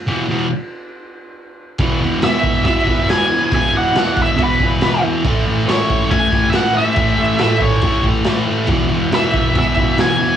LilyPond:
<<
  \new Staff \with { instrumentName = "Lead electric guitar" } { \time 4/4 \key e \major \tempo 4 = 139 r1 | r4 e''4 e''4 gis''4 | gis''8 fis''4 e''8 b'4. r8 | r4 cis''4 gis''8.~ gis''32 e''32 fis''8 e''8~ |
e''4 e''8 cis''4 r4. | r4 e''4 e''4 gis''4 | }
  \new Staff \with { instrumentName = "Distorted electric guitar" } { \clef bass \time 4/4 \key e \major <e, b, e>8 <e, b, e>8 r2. | <e, b, e>8 <b, e>8 <e, b, e>4 <e, b, e>8 <b, e>8 <e, b, e>8 <b, e>8 | <e, b, e>8 <b, e>8 <e, b, e>4 <e, b, e>8 <b, e>8 <e, b, e>8 <b, e>8 | <a, e a>8 <e a>8 <a, e a>4 <a, e a>8 <e a>8 <a, e a>8 <e a>8 |
<a, e a>8 <e a>8 <a, e a>4 <a, e a>8 <e a>8 <a, e a>8 <e a>8 | <e, b, e>8 <b, e>8 <e, b, e>4 <e, b, e>8 <b, e>8 <e, b, e>8 <b, e>8 | }
  \new DrumStaff \with { instrumentName = "Drums" } \drummode { \time 4/4 r4 r4 r4 r4 | <cymc bd>4 <cymc sn>8 bd8 <cymc bd>8 bd8 <cymc sn>4 | <cymc bd>4 <cymc sn>8 bd8 <cymc bd>8 bd8 <cymc sn>4 | <cymc bd>4 <cymc sn>8 bd8 <cymc bd>8 bd8 <cymc sn>4 |
<cymc bd>4 <cymc sn>8 bd8 <cymc bd>8 bd8 <cymc sn>4 | <cymc bd>4 <cymc sn>8 bd8 <cymc bd>8 bd8 <cymc sn>4 | }
>>